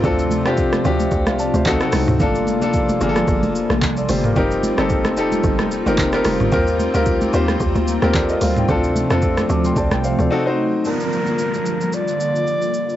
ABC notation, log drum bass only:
X:1
M:4/4
L:1/16
Q:"Swing 16ths" 1/4=111
K:Gm
V:1 name="Log drum bass" clef=bass
D,,3 F,,3 D,,2 D,, C,,2 D,, D,, z C,, D,, | G,,,3 F,,,3 G,,,2 G,,, F,,,2 B,,,3 G,,,2 | F,,,3 G,,,3 F,,,2 G,,, F,,,2 G,,, F,,,2 F,,, G,,, | E,,3 D,,3 E,,2 E,, D,,2 E,,3 D,,2 |
D,,3 F,,3 D,,2 D,, C,,2 D,, z4 | z16 |]